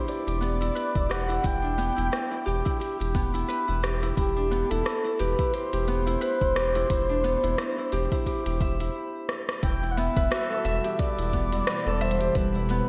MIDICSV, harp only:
0, 0, Header, 1, 2, 480
1, 0, Start_track
1, 0, Key_signature, 1, "minor"
1, 0, Tempo, 681818
1, 1018, Time_signature, 4, 2, 24, 8
1, 9074, End_track
2, 0, Start_track
2, 0, Title_t, "Harp"
2, 0, Program_c, 0, 46
2, 0, Note_on_c, 0, 59, 96
2, 0, Note_on_c, 0, 62, 101
2, 0, Note_on_c, 0, 64, 97
2, 54, Note_on_c, 0, 67, 70
2, 186, Note_off_c, 0, 67, 0
2, 189, Note_on_c, 0, 67, 70
2, 284, Note_off_c, 0, 59, 0
2, 287, Note_on_c, 0, 59, 93
2, 425, Note_off_c, 0, 64, 0
2, 427, Note_on_c, 0, 64, 96
2, 529, Note_on_c, 0, 71, 98
2, 666, Note_off_c, 0, 64, 0
2, 669, Note_on_c, 0, 64, 72
2, 767, Note_off_c, 0, 67, 0
2, 769, Note_on_c, 0, 67, 96
2, 903, Note_off_c, 0, 64, 0
2, 905, Note_on_c, 0, 64, 91
2, 1006, Note_off_c, 0, 64, 0
2, 1008, Note_on_c, 0, 64, 84
2, 1139, Note_off_c, 0, 62, 0
2, 1141, Note_on_c, 0, 62, 95
2, 1249, Note_off_c, 0, 59, 0
2, 1251, Note_on_c, 0, 59, 100
2, 1379, Note_off_c, 0, 64, 0
2, 1382, Note_on_c, 0, 64, 95
2, 1489, Note_off_c, 0, 64, 0
2, 1492, Note_on_c, 0, 64, 78
2, 1622, Note_off_c, 0, 64, 0
2, 1625, Note_on_c, 0, 64, 70
2, 1727, Note_off_c, 0, 67, 0
2, 1730, Note_on_c, 0, 67, 99
2, 1863, Note_off_c, 0, 64, 0
2, 1866, Note_on_c, 0, 64, 94
2, 1968, Note_off_c, 0, 67, 0
2, 1971, Note_on_c, 0, 67, 76
2, 1972, Note_off_c, 0, 71, 0
2, 2107, Note_off_c, 0, 67, 0
2, 2110, Note_on_c, 0, 67, 71
2, 2213, Note_off_c, 0, 59, 0
2, 2216, Note_on_c, 0, 59, 94
2, 2346, Note_off_c, 0, 64, 0
2, 2349, Note_on_c, 0, 64, 96
2, 2453, Note_on_c, 0, 71, 95
2, 2586, Note_off_c, 0, 64, 0
2, 2589, Note_on_c, 0, 64, 77
2, 2693, Note_off_c, 0, 67, 0
2, 2696, Note_on_c, 0, 67, 94
2, 2831, Note_off_c, 0, 64, 0
2, 2834, Note_on_c, 0, 64, 87
2, 2935, Note_off_c, 0, 64, 0
2, 2938, Note_on_c, 0, 64, 81
2, 3070, Note_off_c, 0, 62, 0
2, 3073, Note_on_c, 0, 62, 96
2, 3173, Note_off_c, 0, 59, 0
2, 3175, Note_on_c, 0, 59, 91
2, 3311, Note_off_c, 0, 64, 0
2, 3314, Note_on_c, 0, 64, 97
2, 3412, Note_off_c, 0, 64, 0
2, 3415, Note_on_c, 0, 64, 84
2, 3546, Note_off_c, 0, 64, 0
2, 3549, Note_on_c, 0, 64, 75
2, 3655, Note_off_c, 0, 67, 0
2, 3658, Note_on_c, 0, 67, 98
2, 3788, Note_off_c, 0, 64, 0
2, 3791, Note_on_c, 0, 64, 93
2, 3894, Note_off_c, 0, 67, 0
2, 3895, Note_off_c, 0, 71, 0
2, 3897, Note_on_c, 0, 67, 78
2, 4031, Note_off_c, 0, 67, 0
2, 4034, Note_on_c, 0, 67, 73
2, 4135, Note_off_c, 0, 59, 0
2, 4137, Note_on_c, 0, 59, 94
2, 4266, Note_off_c, 0, 64, 0
2, 4269, Note_on_c, 0, 64, 101
2, 4372, Note_on_c, 0, 71, 94
2, 4511, Note_off_c, 0, 64, 0
2, 4514, Note_on_c, 0, 64, 74
2, 4615, Note_off_c, 0, 67, 0
2, 4618, Note_on_c, 0, 67, 98
2, 4751, Note_off_c, 0, 64, 0
2, 4754, Note_on_c, 0, 64, 92
2, 4853, Note_off_c, 0, 64, 0
2, 4856, Note_on_c, 0, 64, 83
2, 4990, Note_off_c, 0, 62, 0
2, 4993, Note_on_c, 0, 62, 96
2, 5092, Note_off_c, 0, 59, 0
2, 5095, Note_on_c, 0, 59, 105
2, 5230, Note_off_c, 0, 64, 0
2, 5233, Note_on_c, 0, 64, 91
2, 5334, Note_off_c, 0, 64, 0
2, 5337, Note_on_c, 0, 64, 81
2, 5474, Note_off_c, 0, 64, 0
2, 5477, Note_on_c, 0, 64, 75
2, 5575, Note_off_c, 0, 67, 0
2, 5578, Note_on_c, 0, 67, 97
2, 5713, Note_off_c, 0, 64, 0
2, 5716, Note_on_c, 0, 64, 102
2, 5815, Note_off_c, 0, 71, 0
2, 5818, Note_off_c, 0, 67, 0
2, 5820, Note_on_c, 0, 67, 76
2, 5953, Note_off_c, 0, 67, 0
2, 5955, Note_on_c, 0, 67, 73
2, 6062, Note_on_c, 0, 76, 73
2, 6193, Note_off_c, 0, 64, 0
2, 6196, Note_on_c, 0, 64, 77
2, 6776, Note_off_c, 0, 64, 0
2, 6779, Note_on_c, 0, 64, 80
2, 6917, Note_off_c, 0, 64, 0
2, 6919, Note_on_c, 0, 64, 72
2, 6963, Note_off_c, 0, 62, 0
2, 7017, Note_off_c, 0, 59, 0
2, 7020, Note_on_c, 0, 59, 94
2, 7158, Note_on_c, 0, 71, 100
2, 7256, Note_on_c, 0, 66, 100
2, 7275, Note_off_c, 0, 76, 0
2, 7298, Note_off_c, 0, 67, 0
2, 7393, Note_on_c, 0, 69, 103
2, 7495, Note_on_c, 0, 76, 95
2, 7633, Note_on_c, 0, 67, 74
2, 7675, Note_off_c, 0, 66, 0
2, 7734, Note_off_c, 0, 71, 0
2, 7737, Note_on_c, 0, 71, 73
2, 7871, Note_off_c, 0, 64, 0
2, 7874, Note_on_c, 0, 64, 68
2, 7975, Note_off_c, 0, 59, 0
2, 7978, Note_on_c, 0, 59, 93
2, 8109, Note_off_c, 0, 64, 0
2, 8111, Note_on_c, 0, 64, 73
2, 8212, Note_off_c, 0, 59, 0
2, 8215, Note_on_c, 0, 59, 83
2, 8351, Note_off_c, 0, 69, 0
2, 8354, Note_on_c, 0, 69, 98
2, 8451, Note_off_c, 0, 76, 0
2, 8454, Note_on_c, 0, 76, 109
2, 8588, Note_off_c, 0, 67, 0
2, 8591, Note_on_c, 0, 67, 74
2, 8698, Note_off_c, 0, 64, 0
2, 8701, Note_on_c, 0, 64, 83
2, 8834, Note_off_c, 0, 64, 0
2, 8837, Note_on_c, 0, 64, 77
2, 8940, Note_off_c, 0, 59, 0
2, 8943, Note_on_c, 0, 59, 105
2, 9070, Note_off_c, 0, 71, 0
2, 9074, Note_off_c, 0, 59, 0
2, 9074, Note_off_c, 0, 64, 0
2, 9074, Note_off_c, 0, 67, 0
2, 9074, Note_off_c, 0, 69, 0
2, 9074, Note_off_c, 0, 76, 0
2, 9074, End_track
0, 0, End_of_file